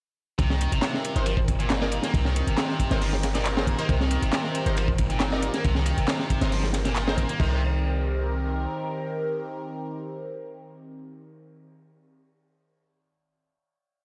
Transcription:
0.39 C2 C3 D#3 C4 G4 A#4, kick, closed hi-hat, ride
0.50 D#3, snare
0.61 closed hi-hat, ride
0.72 G1 C3, closed hi-hat, ride
0.82 C3, snare, clap, closed hi-hat, ride
0.94 snare
1.05 closed hi-hat, ride
1.16 G1 D#4 A#4 C5, closed hi-hat
1.26 F3, closed hi-hat, ride
1.37 kick
1.48 kick, closed hi-hat, ride
1.59 A#2, closed hi-hat
1.70 snare, clap, closed hi-hat, ride
1.81 D#4 A#4 D5, snare
1.92 closed hi-hat, ride
2.03 A#3, snare, closed hi-hat
2.14 C2 C3, kick, closed hi-hat, ride
2.25 D#3, snare
2.36 closed hi-hat, ride
2.47 G1 C3, closed hi-hat
2.58 C3, snare, clap, closed hi-hat, ride
2.69 snare
2.79 kick, closed hi-hat, ride
2.91 G1 D#4 A#4 C5, snare, closed hi-hat
3.01 F3, closed hi-hat, open hi-hat
3.13 snare
3.23 snare, closed hi-hat, ride
3.35 A#2 D#4 A#4 D5, snare, closed hi-hat
3.45 clap, closed hi-hat, ride
3.57 D#4 A#4 C5, snare
3.67 kick, closed hi-hat, ride
3.78 A#3 D#4 A#4 C5, closed hi-hat
3.89 C2 C3, kick, closed hi-hat, ride
4.00 D#3, snare
4.11 closed hi-hat, ride
4.22 G1 C3, closed hi-hat, ride
4.33 C3, snare, clap, closed hi-hat, ride
4.44 snare
4.55 closed hi-hat, ride
4.66 G1 D#4 A#4 C5, closed hi-hat
4.77 F3, closed hi-hat, ride
4.88 kick
4.98 kick, closed hi-hat, ride
5.10 A#2, closed hi-hat
5.20 snare, clap, closed hi-hat, ride
5.32 D#4 A#4 D5, snare
5.42 closed hi-hat, ride
5.54 A#3, snare, closed hi-hat
5.64 C2 C3, kick, closed hi-hat, ride
5.75 D#3, snare
5.86 closed hi-hat, ride
5.97 G1 C3, closed hi-hat
6.08 C3, snare, clap, closed hi-hat, ride
6.19 snare
6.30 kick, closed hi-hat, ride
6.41 G1 D#4 A#4 C5, snare, closed hi-hat
6.52 F3, closed hi-hat, open hi-hat
6.64 snare
6.73 snare, closed hi-hat, ride
6.85 A#2, snare, closed hi-hat
6.96 clap, closed hi-hat, ride
7.07 D#4 A#4 C5, snare
7.18 kick, closed hi-hat, ride
7.29 A#3, closed hi-hat
7.40 C2 C3 D#3 C4 D#4 G4 A#4 C5, kick, crash

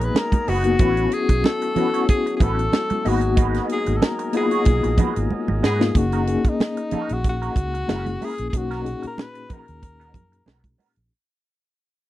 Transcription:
Already playing: F#3 G#3 A#3 B3 D#4 F#4 G#4 A#4
0.01 B4, muted clean electric guitar stroke, closed hi-hat
0.15 A#4, muted clean electric guitar stroke, snare, high conga
0.32 muted clean electric guitar stroke, kick, closed hi-hat, high conga
0.48 F#1 B3 D#4 F#4 B4, open hi-hat
0.64 A#3 B3 D#4 F#4, closed hi-hat
0.79 A1 A3 B3 C#4 E4 F#4 B4, kick, closed hi-hat, muted conga
0.97 closed hi-hat
1.12 G#4, closed hi-hat
1.29 B1, muted clean electric guitar stroke, kick, closed hi-hat
1.44 A4, muted clean electric guitar stroke, snare, high conga
1.62 muted clean electric guitar stroke, closed hi-hat
1.75 A3 B3 C#4 E4 F#4 B4, closed hi-hat, low conga
1.94 A3 C#4 F#4 C#5, closed hi-hat
2.08 G#4, muted clean electric guitar stroke, kick, closed hi-hat, muted conga
2.26 muted clean electric guitar stroke, closed hi-hat
2.36 A3 G#4, kick
2.41 A1 C#4 F#4 A4 B4, closed hi-hat, muted conga
2.58 muted clean electric guitar stroke, closed hi-hat
2.72 muted clean electric guitar stroke, snare, high conga
2.90 muted clean electric guitar stroke, closed hi-hat, high conga
3.05 G#1 G#3 A#3 B3 D#4 F#4 G#4 A#4 B4, open hi-hat
3.21 muted clean electric guitar stroke, closed hi-hat
3.37 G#3 D#4 F#4 B4, kick, closed hi-hat, muted conga
3.54 snare, closed hi-hat
3.69 G#4, closed hi-hat
3.86 G#1, muted clean electric guitar stroke, closed hi-hat
3.97 A4
4.01 A#4, muted clean electric guitar stroke, snare, high conga
4.19 muted clean electric guitar stroke, closed hi-hat
4.33 G#3 A#3 B3 D#4 F4 F#4 G#4 B4, closed hi-hat
4.51 G#3 D#4 F#4 C#5, closed hi-hat
4.65 B1, muted clean electric guitar stroke, kick, closed hi-hat, muted conga
4.83 A#1, muted clean electric guitar stroke, closed hi-hat
4.98 G#3 D#4 F#4 B4, kick, closed hi-hat, muted conga, low conga
5.16 G#1, muted clean electric guitar stroke, closed hi-hat
5.31 muted clean electric guitar stroke, high conga
5.48 G#1, muted clean electric guitar stroke, high conga
5.63 G#2 G#3 D#4 F#4 G#4 B4, snare, high conga
5.80 A#3 B3 D#4 F4, muted clean electric guitar stroke, snare
5.94 F#1 A#3 C#4 D#4 F#4 G#4, muted clean electric guitar stroke, kick, closed hi-hat, muted conga
6.12 G#3 D#4 F#4 A#4, closed hi-hat
6.27 A#3 C#4 D#4 G#4, muted clean electric guitar stroke, closed hi-hat
6.44 muted clean electric guitar stroke, muted fingered electric bass stroke, kick, closed hi-hat
6.48 D#4
6.60 snare, high conga
6.77 muted clean electric guitar stroke, closed hi-hat
6.91 G#3 D#4 F#4 A#4, muted fingered electric bass stroke, closed hi-hat, low conga
7.09 A#1 F#4, muted clean electric guitar stroke, closed hi-hat
7.24 muted clean electric guitar stroke, kick, closed hi-hat
7.29 F#4
7.42 G#3 D#4 F#4 A#4, closed hi-hat
7.56 C#2, muted clean electric guitar stroke, kick, closed hi-hat, muted conga
7.74 muted clean electric guitar stroke, closed hi-hat
7.88 F#1 F#3 A#3 C#4 E4 G#4 A#4, snare, high conga
8.06 closed hi-hat, high conga
8.21 F#3 C#4 E4 G#4 A#4, open hi-hat, high conga
8.38 A#1, muted clean electric guitar stroke, closed hi-hat
8.49 A#3 G#4
8.53 B1 C#4 D#4 F#4, muted clean electric guitar stroke, kick, closed hi-hat, muted conga
8.57 F#4
8.71 F#3 B3 D#4 A#4, snare, closed hi-hat
8.84 A#2 C#4 D#4 G#4, muted clean electric guitar stroke, closed hi-hat
9.03 muted clean electric guitar stroke, muted fingered electric bass stroke, closed hi-hat
9.07 A#4
9.18 snare, high conga
9.22 B4
9.34 muted clean electric guitar stroke, closed hi-hat
9.49 F#3 B3 D#4 A#4, muted fingered electric bass stroke, kick, closed hi-hat, low conga
9.53 A#4
9.67 D#2, muted clean electric guitar stroke, closed hi-hat
9.82 muted clean electric guitar stroke, kick, closed hi-hat, muted conga
10.00 F#3 B3 D#4 A#4, closed hi-hat
10.14 F#2, muted clean electric guitar stroke, kick, closed hi-hat, muted conga, low conga
10.32 muted clean electric guitar stroke, closed hi-hat
10.46 B1 F#3 B3 D#4 A#4, snare, high conga
10.64 kick, closed hi-hat, high conga
10.78 F#3 B3 D#4 A#4, open hi-hat, high conga
10.96 A#1, closed hi-hat

